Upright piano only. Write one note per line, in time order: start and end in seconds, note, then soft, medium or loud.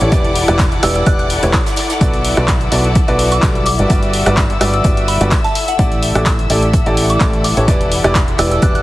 0.01 0.10 E3 medium
0.01 0.10 E4 medium
0.01 0.11 G4 medium
0.01 0.10 A4 medium
0.01 0.10 C#5 medium
0.12 0.45 E3 medium
0.12 0.45 E4 medium
0.12 0.45 G4 medium
0.12 0.45 B4 medium
0.12 0.45 D5 medium
0.48 0.62 E3 loud
0.48 0.62 E4 medium
0.48 0.62 G4 medium
0.48 0.62 B4 medium
0.48 0.62 D5 loud
0.83 1.04 E3 loud
0.83 1.04 E4 medium
0.83 1.04 G4 medium
0.83 1.04 B4 medium
0.83 1.04 D5 loud
1.06 1.40 E3 medium
1.06 1.40 E4 medium
1.06 1.40 G4 medium
1.06 1.40 B4 medium
1.06 1.40 D5 medium
1.43 1.56 E3 medium
1.43 1.56 E4 medium
1.43 1.56 G4 medium
1.43 1.56 B4 medium
1.43 1.56 C#5 medium
2.01 2.34 B3 medium
2.01 2.34 F#4 medium
2.01 2.34 A4 medium
2.01 2.34 B4 medium
2.01 2.34 D5 medium
2.37 2.51 B3 medium
2.37 2.51 F#4 medium
2.37 2.51 A4 medium
2.37 2.51 B4 medium
2.37 2.51 D5 medium
2.72 2.87 B3 medium
2.72 2.87 F#4 medium
2.72 2.87 A4 medium
2.72 2.87 B4 medium
2.72 2.87 D5 medium
3.08 3.40 B3 medium
3.08 3.40 F#4 medium
3.08 3.40 A4 medium
3.08 3.40 B4 medium
3.08 3.40 D5 loud
3.43 3.65 G3 medium
3.43 3.65 F#4 medium
3.43 3.65 A4 medium
3.43 3.65 B4 medium
3.43 3.65 D5 medium
3.79 3.88 G3 medium
3.79 3.88 F#4 medium
3.79 3.88 G4 medium
3.79 3.88 B4 medium
3.79 3.88 D5 medium
3.90 4.23 G3 medium
3.90 4.23 F#4 medium
3.90 4.23 G4 medium
3.90 4.23 B4 medium
3.90 4.23 D5 medium
4.26 4.40 G3 loud
4.26 4.40 F#4 medium
4.26 4.40 G4 medium
4.26 4.40 B4 medium
4.26 4.40 D5 loud
4.61 4.82 G3 loud
4.61 4.82 F#4 medium
4.61 4.82 G4 medium
4.61 4.82 B4 medium
4.61 4.82 D5 loud
4.84 5.18 G3 medium
4.84 5.18 F#4 medium
4.84 5.18 G4 medium
4.84 5.18 B4 medium
4.84 5.18 D5 medium
5.21 5.34 G3 medium
5.21 5.34 F#4 medium
5.21 5.34 G4 medium
5.21 5.34 B4 medium
5.21 5.34 D5 loud
5.79 6.12 A3 medium
5.79 6.12 E4 medium
5.79 6.12 G4 medium
5.79 6.12 A4 medium
5.79 6.12 D5 medium
6.15 6.29 A3 medium
6.15 6.29 E4 medium
6.15 6.29 G4 medium
6.15 6.29 A4 medium
6.15 6.29 D5 medium
6.50 6.65 A3 medium
6.50 6.65 E4 medium
6.50 6.65 G4 medium
6.50 6.65 A4 medium
6.50 6.65 D5 medium
6.86 7.18 A3 medium
6.86 7.18 E4 medium
6.86 7.18 G4 medium
6.86 7.18 A4 medium
6.86 7.18 D5 loud
7.21 7.43 A3 medium
7.21 7.43 E4 medium
7.21 7.43 G4 medium
7.21 7.43 A4 medium
7.21 7.43 D5 medium
7.57 7.66 E3 medium
7.57 7.66 E4 medium
7.57 7.66 G4 medium
7.57 7.66 A4 medium
7.57 7.66 C#5 medium
7.68 8.01 E3 medium
7.68 8.01 E4 medium
7.68 8.01 G4 medium
7.68 8.01 B4 medium
7.68 8.01 D5 medium
8.04 8.18 E3 loud
8.04 8.18 E4 medium
8.04 8.18 G4 medium
8.04 8.18 B4 medium
8.04 8.18 D5 loud
8.39 8.60 E3 loud
8.39 8.60 E4 medium
8.39 8.60 G4 medium
8.39 8.60 B4 medium
8.39 8.60 D5 loud
8.62 8.82 E3 medium
8.62 8.82 E4 medium
8.62 8.82 G4 medium
8.62 8.82 B4 medium
8.62 8.82 D5 medium